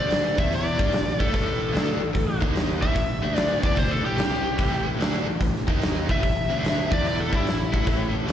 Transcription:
Already playing: picked electric bass D2, overdriven electric guitar D3 A3 D4
0.00 electric slide guitar D5
0.11 snare, open hi-hat
0.37 picked electric bass E2, overdriven electric guitar E3 B3 E4, electric slide guitar E5, kick
0.52 electric slide guitar D5, open hi-hat
0.79 picked electric bass G2, overdriven electric guitar G3 D4 G4, kick
0.92 picked electric bass A1, overdriven electric guitar A2 E3, snare, open hi-hat
1.09 snare
1.19 picked electric bass A2, overdriven electric guitar A3 E4 A4, electric slide guitar A4, kick
1.31 picked electric bass A1, overdriven electric guitar A2 E3 A3, kick
1.35 open hi-hat
1.72 picked electric bass D2, overdriven electric guitar D3 A3 D4, open hi-hat
1.77 snare
2.00 picked electric bass A1, overdriven electric guitar A2 E3
2.14 picked electric bass A1, overdriven electric guitar A2 E3, kick, open hi-hat
2.40 picked electric bass D#2, overdriven electric guitar D#3 A#3 D#4, kick
2.56 snare, open hi-hat
2.81 picked electric bass A1, overdriven electric guitar A2 E3 A3, electric slide guitar E5, kick
2.95 picked electric bass A1, overdriven electric guitar A2 E3, kick, open hi-hat
3.22 picked electric bass D2, overdriven electric guitar D3 A3 D4
3.36 electric slide guitar D5, snare, open hi-hat
3.63 picked electric bass E2, overdriven electric guitar E3 B3 E4, electric slide guitar D5, kick
3.76 picked electric bass D2, overdriven electric guitar D3 A3 D4, electric slide guitar C5, kick, open hi-hat
3.92 electric slide guitar A4
4.03 picked electric bass A1, overdriven electric guitar A2 E3 A3, electric slide guitar G4
4.17 picked electric bass C2, overdriven electric guitar C3 G3 C4, snare, open hi-hat
4.34 snare
4.58 picked electric bass A1, overdriven electric guitar A2 E3 A3, kick, open hi-hat
4.99 picked electric bass D2, overdriven electric guitar D3 A3 D4, snare, open hi-hat
5.25 picked electric bass A1, overdriven electric guitar A2 E3
5.40 picked electric bass A1, overdriven electric guitar A2 E3, kick, open hi-hat
5.56 snare
5.67 picked electric bass D#2, overdriven electric guitar D#3 A#3 D#4, kick
5.82 snare, open hi-hat
6.08 picked electric bass A1, overdriven electric guitar A2 E3 A3, electric slide guitar E5, kick
6.23 picked electric bass A1, overdriven electric guitar A2 E3, kick, open hi-hat
6.49 picked electric bass D2, overdriven electric guitar D3 A3 D4
6.65 snare, open hi-hat
6.91 picked electric bass E2, overdriven electric guitar E3 B3 E4, electric slide guitar D5, kick
7.06 electric slide guitar D5, open hi-hat
7.20 electric slide guitar A4
7.32 picked electric bass G2, overdriven electric guitar G3 D4 G4, electric slide guitar E4, kick
7.45 picked electric bass A1, overdriven electric guitar A2 E3, snare, open hi-hat
7.73 picked electric bass A2, overdriven electric guitar A3 E4 A4, kick
7.85 picked electric bass A1, overdriven electric guitar A2 E3 A3, kick, open hi-hat
8.27 picked electric bass D2, overdriven electric guitar D3 A3 D4, open hi-hat

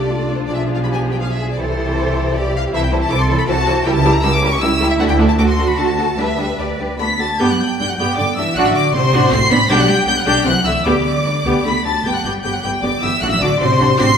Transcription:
Already playing: double bass section C2, viola section A3 D4, violin section F4 A4 D5
0.07 cello section F4
0.35 violin section C5
0.45 double bass section B1, viola section F3, violin section G#4 D5
0.54 violin section E5
0.75 violin section F5
0.83 cello section G4, violin section B5
0.93 violin section G#5
1.12 violin section G5
1.20 cello section G#4, violin section F5
1.32 violin section E5
1.51 violin section D5
1.58 double bass section C2, viola section E3 E4, violin section G4 C5, cello section A4
2.35 cello section G4, violin section D5
2.56 violin section F5
2.72 double bass section C2, viola section E3 E4, cello section E4, violin section A4 C5 E5
2.83 violin section G5
2.92 viola section E3 E4, violin section A4 C5
3.01 violin section A5
3.09 double bass section C2, viola section E3 E4, cello section A4, violin section A4 C5 D6
3.20 violin section C6
3.29 viola section E3 E4, violin section A4 C5
3.38 violin section B5
3.47 double bass section C2, viola section E3 E4, cello section F#4, violin section A4 C5 A5
3.66 viola section E3 E4, violin section A4 C5
3.84 double bass section C#2, viola section G3 E4, cello section E4, violin section G4 A#4 G5
3.95 violin section A5
4.04 viola section G3 E4, violin section G4 A#4
4.13 violin section A#5
4.22 double bass section C#2, viola section G3 E4, cello section C#4, violin section G4 A#4 E6
4.32 violin section D6
4.42 viola section G3 E4, violin section G4 A#4
4.51 violin section C#6
4.60 double bass section C#2, viola section G3 E4, cello section E4, violin section G4 A#4 E6
4.80 viola section G3 E4, violin section G4 A#4
4.89 violin section E5
4.99 double bass section D2, viola section A3 D4, violin section F#4 A4 F#5
5.09 violin section G5
5.18 viola section A3 D4, violin section F#4 A4
5.28 violin section A5
5.38 double bass section D2, viola section A3 D4, cello section F#4, violin section F#4 A4 D6
5.48 violin section C6
5.57 viola section A3 D4, violin section F#4 A4
5.67 violin section B5
5.77 double bass section D2, viola section A3 D4, violin section F#4 A4 A5
5.97 viola section A3 D4, violin section F#4 A4
6.17 double bass section D2, viola section G3 D4, violin section G4 B4 E5, cello section B4
6.38 viola section G3 D4, violin section G4 B4
6.58 double bass section D2, viola section G3 D4, violin section G4 B4 D5
6.79 viola section G3 D4, violin section G4 B4
6.98 double bass section D2, viola section A3 D4, cello section B3, violin section F#4 A4 B5 B6
7.19 cello section A3, viola section A3 D4, violin section F#4 A4 A5 A6
7.39 double bass section G2, cello section G3, viola section B3 G4, violin section G5 G6
7.49 cello section F#3, violin section F#5 F#6
7.59 cello section G3, violin section G5 G6
7.78 double bass section G2, cello section G3, viola section G3 D4, violin section G5 G6
7.88 cello section F#3, violin section F#5 F#6
7.97 double bass section G2, cello section G3, viola section B3 G4, violin section G5 G6
8.16 double bass section G2, cello section D3, viola section D3 B3, violin section D5 D6
8.35 double bass section G2, cello section E3, viola section G3 D4, violin section E5 E6
8.55 double bass section A1, cello section F#3, viola section D4 F#4, violin section F#5 F#6
8.65 cello section E3, violin section E5 E6
8.74 cello section D3, violin section D5 D6
8.93 double bass section A1, cello section C3, viola section C4 D4, violin section C5 C6
9.12 double bass section A1, viola section D4 F#4
9.31 double bass section A1, viola section A3 C4, cello section C4, violin section C6 C7
9.50 double bass section A1, cello section B3, viola section C4 D4, violin section B5 B6
9.68 double bass section B1, cello section G3, viola section D4 G4, violin section G5 G6
9.78 cello section F#3, violin section F#5 F#6
9.87 cello section G3, violin section G5 G6
10.06 double bass section B1, cello section G3, viola section B3 D4, violin section G5 G6
10.15 cello section F#3, violin section F#5 F#6
10.25 double bass section B1, cello section G3, viola section D4 G4, violin section G5 G6
10.44 double bass section C2, viola section E3 C4, cello section F#3, violin section F#5 F#6
10.64 double bass section C2, cello section E3, viola section A3 E4, violin section E5 E6
10.84 double bass section D2, cello section D3, viola section B3 G4, violin section D5 D6
11.25 double bass section D2, viola section G3 D4
11.44 double bass section D2, viola section B3 G4
11.65 double bass section D2, viola section D3 A3, cello section B3, violin section B5 B6
11.85 double bass section D2, viola section F#3 D4, cello section A3, violin section A5 A6
12.05 double bass section G1, cello section G3, viola section B3 G4, violin section G5 G6
12.14 cello section F#3, violin section F#5 F#6
12.24 double bass section G1, cello section G3, viola section B3 G4, violin section G5 G6
12.42 double bass section G1, cello section G3, viola section B3 G4, violin section G5 G6
12.53 cello section F#3, violin section F#5 F#6
12.62 double bass section G1, cello section G3, viola section B3 G4, violin section G5 G6
12.82 double bass section G1, cello section D3, viola section B3 G4, violin section D5 D6
13.01 double bass section G1, cello section E3, viola section B3 G4, violin section E5 E6
13.21 double bass section A1, cello section F#3, viola section D4 F#4, violin section F#5 F#6
13.30 cello section E3, violin section E5 E6
13.40 double bass section A1, cello section D3, viola section D4 F#4, violin section D5 D6
13.60 double bass section A1, cello section C3, viola section D4 F#4, violin section C5 C6
13.79 double bass section A1, viola section D4 F#4
13.98 double bass section A1, cello section C4, viola section D4 F#4, violin section C6 C7

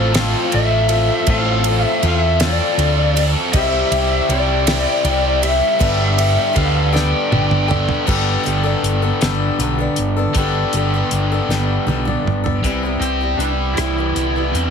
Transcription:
Already playing: fingered electric bass A1, overdriven electric guitar A2, steel-string acoustic guitar F3 C4 F4 A4
0.14 steel-string acoustic guitar A2 F3 C4 F4 A4, snare, ride
0.51 fingered electric bass A1, overdriven electric guitar F3 C4 F4 A4, lead electric guitar E5, ride
0.88 steel-string acoustic guitar C4 F4 A4, ride
1.27 fingered electric bass A1, steel-string acoustic guitar A2 F3 C4 F4 A4, lead electric guitar F5, kick, ride
1.64 overdriven electric guitar C4 F4 A4, ride
1.83 lead electric guitar E5
2.03 fingered electric bass E2, overdriven electric guitar F3, steel-string acoustic guitar C4 F4 A4, lead electric guitar E5, ride
2.40 steel-string acoustic guitar A2 C4 F4 A4, lead electric guitar D5, snare, ride
2.77 fingered electric bass D2, overdriven electric guitar F3 C4 F4 A4, ride
3.16 steel-string acoustic guitar C4 F4 A4, ride
3.53 fingered electric bass C2, steel-string acoustic guitar C3 G3 C4 E4 G4, lead electric guitar E5, kick, ride
3.91 fingered electric bass C2, overdriven electric guitar C4 E4 G4, ride
4.28 fingered electric bass C2, steel-string acoustic guitar G3 C4 E4 G4, lead electric guitar D5, ride
4.67 steel-string acoustic guitar C3 G3 C4 E4 G4, snare, ride
5.04 fingered electric bass C2, overdriven electric guitar G3 C4 E4 G4, ride
5.42 steel-string acoustic guitar C4 E4 G4, lead electric guitar E5, ride
5.79 fingered electric bass G1, overdriven electric guitar G2 D3 G4, steel-string acoustic guitar G3 B3 D4 A4, kick, ride
6.17 overdriven electric guitar G3 B3 D4 G4, ride
6.53 fingered electric bass D2, steel-string acoustic guitar G3 B3 D4 A4, lead electric guitar F5, kick, ride
6.58 overdriven electric guitar G4
6.92 steel-string acoustic guitar G3 B3 D4 A4, overdriven electric guitar G4, lead electric guitar G5, snare
7.31 fingered electric bass G1, overdriven electric guitar G3 B3 D4 G4, mid tom
7.51 mid tom
7.68 overdriven electric guitar G3 G4, steel-string acoustic guitar B3 D4 A4, floor tom
7.89 floor tom
8.05 fingered electric bass G1, overdriven electric guitar G2 D3 G4, steel-string acoustic guitar G3 B3 D4 A4, kick, crash
8.44 fingered electric bass G1, steel-string acoustic guitar G3 B3 D4 A4, closed hi-hat
8.63 steel-string acoustic guitar B3 D4 A4
8.83 fingered electric bass G1, closed hi-hat
9.02 steel-string acoustic guitar B3 D4 A4
9.21 fingered electric bass G1, steel-string acoustic guitar G3 B3 D4 A4, snare, closed hi-hat
9.58 fingered electric bass B1, steel-string acoustic guitar G3 B3 D4 A4, closed hi-hat
9.79 steel-string acoustic guitar B3 D4 A4
9.96 fingered electric bass G1, closed hi-hat
10.17 steel-string acoustic guitar B3 D4 A4
10.33 fingered electric bass G1, overdriven electric guitar G2 D3 G4, steel-string acoustic guitar G3 B3 D4, kick, closed hi-hat
10.38 steel-string acoustic guitar A4
10.73 fingered electric bass G1, steel-string acoustic guitar G3 B3 D4 A4, closed hi-hat
10.94 steel-string acoustic guitar B3 D4 A4
11.11 fingered electric bass G1, closed hi-hat
11.32 steel-string acoustic guitar B3 D4 A4
11.48 fingered electric bass G1, steel-string acoustic guitar G3 B3 D4, snare
11.53 steel-string acoustic guitar A4
11.86 fingered electric bass B1, steel-string acoustic guitar G3 B3 D4 A4, high tom
12.05 steel-string acoustic guitar B3 D4 A4, mid tom
12.24 fingered electric bass G1, mid tom
12.44 steel-string acoustic guitar B3 D4 A4, floor tom
12.64 fingered electric bass C2, steel-string acoustic guitar C3 E3 G3 B3 E4, kick, closed hi-hat
12.83 steel-string acoustic guitar G3 B3 E4
13.00 fingered electric bass C2, lead electric guitar C4, overdriven electric guitar G4, closed hi-hat
13.21 steel-string acoustic guitar G3 B3 E4
13.37 fingered electric bass C2, steel-string acoustic guitar E3 G3 B3, lead electric guitar D4, closed hi-hat
13.42 steel-string acoustic guitar E4
13.75 fingered electric bass C2, lead electric guitar E4, cross-stick, closed hi-hat
13.79 steel-string acoustic guitar C3 E3 G3 B3 E4
13.98 steel-string acoustic guitar G3 B3 E4
14.15 fingered electric bass C2, overdriven electric guitar B3, closed hi-hat
14.36 steel-string acoustic guitar G3 B3 E4
14.50 overdriven electric guitar G3, lead electric guitar C4
14.54 fingered electric bass E2, steel-string acoustic guitar E3 E4, closed hi-hat

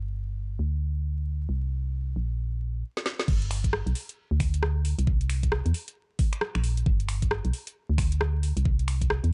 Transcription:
Already playing: fm bass G1
0.59 fm bass D2
1.49 fm bass C2
2.16 fm bass A#1
2.97 snare
3.06 snare
3.19 snare
3.28 fm bass G1, kick, crash
3.42 closed hi-hat
3.51 finger snap, open hi-hat
3.64 kick, closed hi-hat
3.73 cross-stick
3.86 fm bass B1, closed hi-hat
3.95 open hi-hat
4.09 closed hi-hat
4.31 fm bass D2
4.40 finger snap, kick, open hi-hat
4.54 closed hi-hat
4.63 cross-stick
4.85 open hi-hat
4.99 fm bass C2, closed hi-hat
5.07 kick
5.21 closed hi-hat
5.29 finger snap, open hi-hat
5.43 kick, closed hi-hat
5.52 cross-stick
5.66 fm bass E2, closed hi-hat
5.74 open hi-hat
5.88 closed hi-hat
6.19 kick, open hi-hat
6.33 finger snap, closed hi-hat
6.41 cross-stick
6.55 fm bass A#1, finger snap
6.64 open hi-hat
6.77 closed hi-hat
6.86 fm bass G1, kick
7.00 closed hi-hat
7.09 finger snap, open hi-hat
7.22 kick, closed hi-hat
7.31 cross-stick
7.45 fm bass B1, closed hi-hat
7.53 open hi-hat
7.67 closed hi-hat
7.89 fm bass D2
7.98 finger snap, kick, open hi-hat
8.12 closed hi-hat
8.21 cross-stick
8.43 open hi-hat
8.57 fm bass C2, closed hi-hat
8.65 kick
8.79 closed hi-hat
8.88 finger snap, open hi-hat
9.01 kick, closed hi-hat
9.10 cross-stick
9.24 fm bass E2, closed hi-hat

